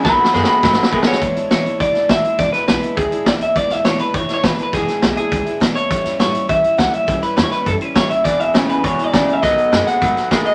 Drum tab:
HH |------------------------|x--x--x--x--x--x--x--x--|x--x--x--x--x--x--x--x--|x--x--x--x--x--x--x--x--|
SD |o---o-o-o---o-o-o---o-o-|------o--------o--o-----|o--o--o-----------o-----|---o--o--------o--o-----|
BD |o-----------o-----o-----|o-----------o-----o-----|o-----------o-----o-----|o-----------o-----o-----|

HH |x--x--x--x--x--x--x--x--|x--x--x--x--x--x--x--x--|x--x--x--x--x--x--x--x--|x--x--x--x--x--x--x--x--|
SD |o--o--o-----------o-----|---o--o-----------o-----|------o--o--------o-----|o-----o-----------o-----|
BD |o-----------o-----o-----|o-----------o-----o-----|o-----------o-----o-----|o-----------o-----o-----|

HH |x--x--x--x--x--x--x--x--|
SD |o-----o--o-----o--o-----|
BD |o-----------o-----o-----|